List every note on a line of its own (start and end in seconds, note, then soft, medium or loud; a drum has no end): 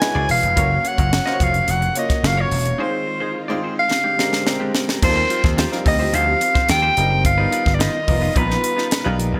0.00 0.55 D3 medium
0.00 2.76 F#3 medium
0.00 0.55 G#3 medium
0.00 0.59 G#3 medium
0.00 0.59 D4 medium
0.00 0.59 E4 medium
0.00 0.02 F#4 medium
0.00 0.42 F#4 medium
0.00 0.59 A#4 medium
0.00 0.02 B4 loud
0.00 0.42 B4 loud
0.00 0.30 G#5 loud
0.00 muted clean electric guitar stroke soft
0.00 snare loud
0.15 0.25 C#2 medium
0.15 0.28 F#4 medium
0.15 0.28 G#4 medium
0.15 0.29 D5 medium
0.29 0.39 E1 medium
0.29 0.89 F5 loud
0.29 open hi-hat medium
0.43 0.53 F1 medium
0.43 muted clean electric guitar stroke soft
0.43 closed hi-hat soft
0.56 0.77 F#1 loud
0.56 2.77 C#3 medium
0.56 1.07 A#3 medium
0.56 2.77 A#3 medium
0.56 1.07 C#4 medium
0.56 0.75 F4 medium
0.56 1.07 F4 medium
0.56 1.08 F#4 medium
0.56 0.70 A#4 medium
0.56 1.08 C#5 medium
0.56 0.69 C#5 medium
0.56 kick loud
0.56 closed hi-hat medium
0.71 muted clean electric guitar stroke soft
0.84 1.45 F#5 loud
0.84 muted clean electric guitar stroke soft
0.84 closed hi-hat medium
0.98 1.18 F#1 loud
0.98 1.11 F4 soft
0.98 1.12 A#4 medium
0.98 1.12 C#5 medium
0.98 kick medium
0.98 closed hi-hat soft
1.12 muted clean electric guitar stroke soft
1.12 snare loud
1.25 1.76 A#3 medium
1.25 1.77 C#4 medium
1.25 1.77 F4 medium
1.25 1.38 F4 medium
1.25 1.77 F#4 medium
1.25 1.39 A#4 medium
1.25 1.33 C5 medium
1.25 1.41 D#5 medium
1.25 snare soft
1.33 1.80 C#5 medium
1.40 1.60 F1 medium
1.40 1.54 F4 medium
1.40 1.53 A#4 medium
1.40 1.52 C#5 medium
1.40 1.72 F5 loud
1.40 kick medium
1.40 closed hi-hat medium
1.54 muted clean electric guitar stroke soft
1.54 closed hi-hat soft
1.67 1.88 F1 medium
1.67 1.97 F#5 loud
1.67 muted clean electric guitar stroke soft
1.67 closed hi-hat medium
1.81 muted clean electric guitar stroke medium
1.81 closed hi-hat soft
1.95 2.16 A#3 medium
1.95 2.16 C#4 medium
1.95 2.16 F4 medium
1.95 2.16 F#4 medium
1.95 2.17 C#5 medium
1.95 2.28 D#5 medium
1.95 closed hi-hat medium
2.09 muted clean electric guitar stroke soft
2.09 kick medium
2.09 snare soft
2.09 closed hi-hat soft
2.23 2.43 F#1 medium
2.23 2.64 A#3 medium
2.23 2.64 C#4 medium
2.23 2.64 F4 medium
2.23 2.64 F#4 medium
2.23 2.65 C#5 medium
2.23 2.43 F5 loud
2.23 muted clean electric guitar stroke soft
2.23 snare loud
2.37 2.50 F4 medium
2.37 2.51 A#4 medium
2.37 2.51 C#5 medium
2.37 2.81 C#5 medium
2.51 2.71 E1 medium
2.51 open hi-hat medium
2.65 muted clean electric guitar stroke soft
2.65 closed hi-hat soft
2.78 3.89 D#3 medium
2.78 3.89 G#3 medium
2.78 3.30 G#3 medium
2.78 3.30 C4 medium
2.78 2.97 D#4 medium
2.78 3.30 D#4 medium
2.78 3.89 F4 medium
2.78 3.30 F4 medium
2.78 2.93 G#4 medium
2.78 2.91 C5 medium
2.78 3.30 C5 medium
2.83 3.48 C5 medium
2.93 muted clean electric guitar stroke medium
3.07 muted clean electric guitar stroke soft
3.20 3.33 D#4 medium
3.20 3.34 G#4 medium
3.20 3.34 C5 medium
3.35 muted clean electric guitar stroke soft
3.48 3.91 G#3 loud
3.48 3.91 C4 loud
3.48 3.91 D#4 loud
3.48 3.61 D#4 medium
3.48 3.91 F4 medium
3.48 3.62 G#4 medium
3.48 3.91 C5 loud
3.48 3.64 D5 loud
3.62 3.77 D#4 medium
3.62 3.77 G#4 medium
3.62 3.75 C5 medium
3.76 4.71 F5 loud
3.76 muted clean electric guitar stroke soft
3.90 5.01 D3 medium
3.90 5.01 G#3 medium
3.90 5.01 C4 medium
3.90 5.01 G4 medium
3.90 muted clean electric guitar stroke soft
3.90 snare medium
4.04 4.17 G#3 medium
4.04 4.18 D4 medium
4.04 4.18 G4 medium
4.18 4.38 G#3 medium
4.18 4.38 C4 medium
4.18 4.39 D4 medium
4.18 4.39 G4 medium
4.18 4.39 A#4 medium
4.18 muted clean electric guitar stroke soft
4.18 snare medium
4.32 muted clean electric guitar stroke soft
4.32 snare medium
4.46 4.86 G#3 loud
4.46 4.87 C4 medium
4.46 4.87 D4 medium
4.46 4.87 G4 medium
4.46 4.87 A#4 loud
4.46 muted clean electric guitar stroke soft
4.46 snare medium
4.60 4.73 G#3 medium
4.60 4.73 D4 medium
4.60 4.74 G4 medium
4.75 snare loud
4.88 muted clean electric guitar stroke soft
4.88 snare medium
5.02 5.22 D#2 loud
5.02 7.23 F3 medium
5.02 5.52 G3 medium
5.02 5.53 C4 medium
5.02 7.23 C4 medium
5.02 5.53 D#4 medium
5.02 5.53 F4 medium
5.02 7.23 G4 loud
5.02 5.09 A4 medium
5.02 5.55 C5 loud
5.02 muted clean electric guitar stroke soft
5.02 kick loud
5.02 crash loud
5.09 5.56 A#4 medium
5.16 5.29 F4 medium
5.16 5.30 G4 medium
5.16 5.30 C5 medium
5.30 5.44 F4 medium
5.30 5.44 G4 medium
5.30 5.43 C5 medium
5.30 closed hi-hat medium
5.44 5.64 D#2 medium
5.44 muted clean electric guitar stroke medium
5.44 kick medium
5.44 snare soft
5.57 5.76 F4 medium
5.57 5.72 G4 loud
5.57 5.71 C5 medium
5.57 snare loud
5.57 closed hi-hat medium
5.71 5.81 G3 medium
5.71 5.81 C4 medium
5.71 5.82 D#4 medium
5.71 5.82 F4 medium
5.71 5.82 A#4 loud
5.71 muted clean electric guitar stroke soft
5.71 snare soft
5.86 6.05 D2 medium
5.86 6.66 G3 medium
5.86 6.66 C4 medium
5.86 6.66 D#4 medium
5.86 6.66 F4 medium
5.86 6.66 A#4 medium
5.86 6.16 D#5 loud
5.86 muted clean electric guitar stroke soft
5.86 kick loud
5.86 open hi-hat medium
5.99 6.12 F4 medium
5.99 6.13 G4 medium
5.99 6.14 C5 medium
6.13 6.33 D2 loud
6.13 6.31 F4 medium
6.13 6.27 G4 loud
6.13 6.26 C5 loud
6.13 6.70 F5 loud
6.13 closed hi-hat medium
6.27 muted clean electric guitar stroke medium
6.41 muted clean electric guitar stroke soft
6.41 closed hi-hat medium
6.55 6.68 F4 soft
6.55 6.68 G4 medium
6.55 6.69 C5 medium
6.55 kick medium
6.55 snare soft
6.69 6.89 D#2 medium
6.69 7.21 G5 loud
6.69 muted clean electric guitar stroke soft
6.69 snare loud
6.69 closed hi-hat medium
6.82 6.95 F4 medium
6.82 6.96 G4 medium
6.82 6.96 C5 medium
6.96 7.25 F#1 medium
6.96 7.25 G3 medium
6.96 7.25 C4 medium
6.96 7.25 D#4 medium
6.96 7.25 F4 medium
6.96 7.25 A#4 medium
6.96 muted clean electric guitar stroke soft
6.96 closed hi-hat medium
7.10 muted clean electric guitar stroke medium
7.24 7.44 G1 loud
7.24 9.40 D#3 medium
7.24 9.40 B3 medium
7.24 9.40 F4 medium
7.24 7.76 F5 loud
7.24 muted clean electric guitar stroke soft
7.24 kick loud
7.24 closed hi-hat medium
7.38 7.89 G3 medium
7.38 7.89 B3 medium
7.38 7.89 D#4 medium
7.38 7.50 D#4 medium
7.38 7.51 F4 medium
7.38 7.89 F4 medium
7.38 7.89 A#4 medium
7.38 7.52 B4 medium
7.51 7.66 D#4 medium
7.51 7.66 F4 medium
7.51 7.64 B4 medium
7.51 closed hi-hat medium
7.65 7.86 G1 loud
7.65 muted clean electric guitar stroke medium
7.65 kick medium
7.65 snare soft
7.75 7.82 D5 medium
7.79 7.98 D#4 medium
7.79 7.94 F4 loud
7.79 7.93 B4 medium
7.79 8.39 D#5 loud
7.79 snare loud
7.79 closed hi-hat medium
7.94 muted clean electric guitar stroke soft
8.07 8.28 F1 loud
8.07 8.28 G3 medium
8.07 8.28 B3 medium
8.07 8.28 D#4 medium
8.07 8.28 F4 medium
8.07 8.28 A#4 medium
8.07 muted clean electric guitar stroke soft
8.07 kick loud
8.07 open hi-hat medium
8.21 8.34 D#4 medium
8.21 8.35 F4 medium
8.21 8.35 B4 medium
8.35 8.56 A#1 medium
8.35 8.86 G3 medium
8.35 8.86 B3 medium
8.35 8.54 D#4 medium
8.35 8.86 D#4 medium
8.35 8.49 F4 loud
8.35 8.86 F4 medium
8.35 8.48 B4 loud
8.35 9.20 B4 medium
8.35 8.87 A#5 medium
8.35 kick medium
8.35 closed hi-hat medium
8.49 muted clean electric guitar stroke soft
8.49 snare soft
8.63 muted clean electric guitar stroke soft
8.63 closed hi-hat medium
8.77 8.89 D#4 medium
8.77 8.90 F4 medium
8.77 8.90 B4 medium
8.77 snare soft
8.90 muted clean electric guitar stroke soft
8.90 snare loud
8.90 closed hi-hat medium
9.04 9.20 B1 medium
9.04 9.35 G3 loud
9.04 9.35 B3 medium
9.04 9.35 D#4 medium
9.04 9.17 D#4 medium
9.04 9.18 F4 medium
9.04 9.36 F4 medium
9.04 9.36 A#4 loud
9.04 9.18 B4 medium
9.19 9.29 A#1 medium
9.19 muted clean electric guitar stroke soft
9.19 closed hi-hat medium
9.33 9.40 B1 medium
9.33 muted clean electric guitar stroke soft